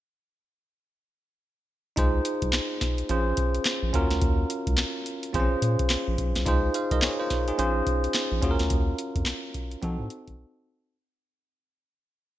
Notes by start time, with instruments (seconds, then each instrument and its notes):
1.96 analog synth bass C#2, tine electric piano D#4 F4 G#4 C5, kick, closed hi-hat
2.25 closed hi-hat
2.42 analog synth bass C2, kick, closed hi-hat
2.53 snare, clap, closed hi-hat
2.81 kick, snare, closed hi-hat
2.98 closed hi-hat
3.09 analog synth bass A#1, tine electric piano C#4 F4 G#4 C5, closed hi-hat
3.37 kick, closed hi-hat
3.55 closed hi-hat
3.65 snare, clap, closed hi-hat
3.83 analog synth bass A#1
3.93 analog synth bass D#2, tine electric piano C#4 F4 F#4 A#4, kick, closed hi-hat
4.11 analog synth bass D2, snare, closed hi-hat
4.22 analog synth bass D#2, kick, closed hi-hat
4.50 closed hi-hat
4.67 analog synth bass C#2, kick, closed hi-hat
4.78 snare, clap, closed hi-hat
5.06 closed hi-hat
5.23 closed hi-hat
5.33 analog synth bass A#1, tine electric piano C4 F4 G#4 C5, kick, closed hi-hat
5.40 tine electric piano C#4
5.62 analog synth bass A#2, closed hi-hat
5.79 kick, closed hi-hat
5.90 snare, clap, closed hi-hat
6.08 analog synth bass A#1
6.18 analog synth bass B1, kick, closed hi-hat
6.35 analog synth bass C2, snare, closed hi-hat
6.46 analog synth bass C#2, tine electric piano D#4 F4 G#4 C5, kick, closed hi-hat
6.74 tine electric piano C5 F5, closed hi-hat
6.91 analog synth bass C2, tine electric piano A#4 D#5, kick, closed hi-hat
7.02 tine electric piano G#4 C#5, snare, clap, closed hi-hat
7.20 tine electric piano F4 C5
7.30 kick, snare, closed hi-hat
7.48 tine electric piano D#4 G#4, closed hi-hat
7.58 analog synth bass A#1, tine electric piano C#4 F4 G#4 C5, closed hi-hat
7.87 kick, closed hi-hat
8.04 closed hi-hat
8.14 snare, clap, closed hi-hat
8.32 analog synth bass A#1
8.42 analog synth bass D#2, tine electric piano C#4 F4 F#4 G#4, kick, closed hi-hat
8.51 tine electric piano A#4
8.59 analog synth bass D2, snare, closed hi-hat
8.70 analog synth bass D#2, kick, closed hi-hat
8.99 closed hi-hat
9.16 analog synth bass F2, kick, closed hi-hat
9.26 snare, clap, closed hi-hat
9.54 kick, closed hi-hat
9.71 closed hi-hat
9.82 analog synth bass F3, tine electric piano C4 D#4 F#4 A4, kick, closed hi-hat
10.00 analog synth bass A2
10.10 closed hi-hat
10.28 analog synth bass A1, kick, closed hi-hat